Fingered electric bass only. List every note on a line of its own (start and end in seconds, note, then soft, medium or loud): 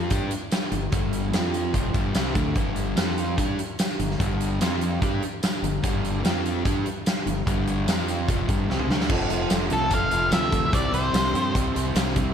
0.10 0.30 G2 medium
0.72 0.91 G1 medium
0.92 1.31 G1 medium
1.33 1.71 F2 medium
1.74 1.93 F1 medium
1.94 2.14 G1 medium
2.14 2.34 C2 medium
2.35 2.54 D2 medium
2.56 2.94 G1 medium
2.96 3.35 F2 medium
3.38 3.57 G2 medium
3.99 4.18 G1 medium
4.20 4.58 G1 medium
4.60 4.98 F2 medium
5.02 5.21 G2 medium
5.62 5.82 G1 medium
5.84 6.22 G1 medium
6.24 6.62 F2 medium
6.65 6.84 G2 medium
7.26 7.45 G1 medium
7.47 7.85 G1 medium
7.87 8.25 F2 medium
8.28 8.47 F1 medium
8.49 8.68 G1 medium
8.69 8.88 C2 medium
8.89 9.08 D2 medium
9.10 9.29 F1 medium
9.31 9.50 F1 medium
9.51 9.70 F1 medium
9.71 9.90 C2 medium
9.91 10.10 F1 medium
10.12 10.31 F1 medium
10.32 10.70 D2 medium
10.73 10.92 C2 medium
10.93 11.12 C2 medium
11.13 11.33 C2 medium
11.34 11.53 G2 medium
11.55 11.74 C2 medium
11.76 11.95 C2 medium
11.95 12.34 C2 medium